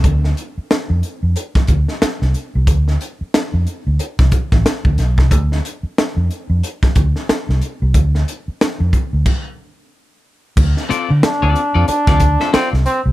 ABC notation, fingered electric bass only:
X:1
M:4/4
L:1/16
Q:"Swing 16ths" 1/4=91
K:Ddor
V:1 name="Fingered electric bass" clef=bass
D,,2 z3 F,, z F,, z2 D,, z2 C,, z C,, | D,,2 z3 F,, z D,, z C,, z A,,, z D,, B,,, C,, | D,,2 z3 F,, z F,, z2 D,, z2 C,, z C,, | D,,2 z3 F,, z D,, z8 |
D,, z2 D, z D,, z F,, z D,,2 z2 C,, z C,, |]